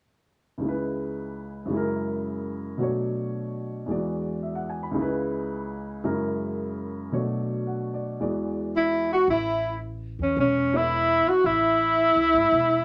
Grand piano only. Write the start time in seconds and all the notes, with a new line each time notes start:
0.58 C#2 C#3
0.63 G#3 E4
0.68 B4
1.65 F#2 C#3
1.71 G#3 E4
1.77 A#4
2.78 B2 F#3 A3 D4
2.83 C#5
3.86 E2 E3 G#3 F#4
3.91 D5
4.43 E5
4.55 F#5
4.70 G#5
4.83 B5
4.91 C#2 C#3
4.96 G#3 E4
5.02 B4
6.04 F#2 C#3 G#3 E4 A#4
7.12 B2 F#3 A3 D4 C#5
7.67 F#5
7.94 D5
8.20 E2 E3 G#3 F#4 D5
10.73 B3 E4 A4 C#5